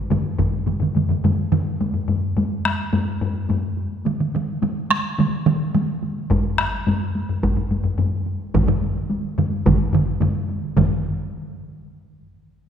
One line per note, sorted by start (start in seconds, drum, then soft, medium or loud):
0.10 taiko low-mid medium
0.10 taiko mid loud
0.10 taiko high medium
0.25 taiko high soft
0.38 taiko medium
0.38 taiko low-mid loud
0.38 taiko mid medium
0.38 taiko high medium
0.53 taiko high soft
0.66 taiko low-mid medium
0.66 taiko mid medium
0.66 taiko high medium
0.80 taiko low-mid medium
0.80 taiko mid medium
0.80 taiko high soft
0.95 taiko low-mid medium
0.95 taiko mid medium
0.95 taiko high medium
1.09 taiko low-mid medium
1.09 taiko mid medium
1.09 taiko high soft
1.24 taiko low-mid medium
1.24 taiko mid loud
1.24 taiko high medium
1.39 taiko high soft
1.52 taiko low-mid medium
1.52 taiko mid loud
1.52 taiko high medium
1.66 taiko high soft
1.81 taiko low-mid medium
1.81 taiko high medium
1.94 taiko low-mid medium
1.94 taiko high soft
2.08 taiko low-mid loud
2.08 taiko high medium
2.23 taiko high soft
2.37 taiko low-mid loud
2.37 taiko high medium
2.52 taiko high soft
2.65 taiko rim medium
2.65 taiko high medium
2.93 taiko low-mid loud
2.93 taiko high medium
3.08 taiko high soft
3.21 taiko low-mid medium
3.21 taiko high medium
3.35 taiko high soft
3.49 taiko low-mid loud
3.49 taiko high medium
3.63 taiko high soft
3.77 taiko high soft
3.92 taiko high soft
4.05 taiko mid medium
4.05 taiko high medium
4.20 taiko mid medium
4.20 taiko high soft
4.34 taiko mid loud
4.34 taiko high medium
4.48 taiko high soft
4.62 taiko mid loud
4.62 taiko high medium
4.77 taiko high soft
4.90 taiko rim medium
4.90 taiko high medium
5.18 taiko mid loud
5.18 taiko high medium
5.33 taiko high soft
5.46 taiko mid loud
5.46 taiko high medium
5.61 taiko high soft
5.75 taiko mid loud
5.75 taiko high medium
5.90 taiko high soft
6.03 taiko high medium
6.17 taiko high soft
6.30 taiko medium
6.30 taiko low-mid loud
6.30 taiko high medium
6.45 taiko high soft
6.58 taiko rim medium
6.58 taiko high medium
6.74 taiko high soft
6.87 taiko low-mid loud
6.87 taiko high medium
7.01 taiko high soft
7.15 taiko high medium
7.29 taiko low-mid medium
7.43 taiko medium
7.43 taiko low-mid medium
7.43 taiko high medium
7.57 taiko low-mid medium
7.57 taiko high soft
7.71 taiko low-mid medium
7.71 taiko high medium
7.84 taiko low-mid medium
7.84 taiko high soft
7.98 taiko low-mid loud
7.98 taiko high medium
8.13 taiko high soft
8.26 taiko high soft
8.41 taiko high soft
8.54 taiko loud
8.54 taiko low-mid loud
8.54 taiko mid loud
8.54 taiko high medium
8.68 taiko low-mid loud
8.68 taiko mid loud
8.82 taiko high soft
8.96 taiko high soft
9.10 taiko high medium
9.24 taiko high soft
9.38 taiko low-mid loud
9.38 taiko mid medium
9.38 taiko high medium
9.51 taiko high soft
9.66 taiko loud
9.66 taiko low-mid medium
9.66 taiko mid loud
9.66 taiko high medium
9.79 taiko high soft
9.93 taiko low-mid loud
9.93 taiko mid loud
9.93 taiko high medium
10.07 taiko high soft
10.21 taiko low-mid loud
10.21 taiko mid loud
10.21 taiko high medium
10.35 taiko high soft
10.49 taiko high medium
10.63 taiko high soft
10.77 taiko medium
10.77 taiko low-mid loud
10.77 taiko mid loud
10.77 taiko high medium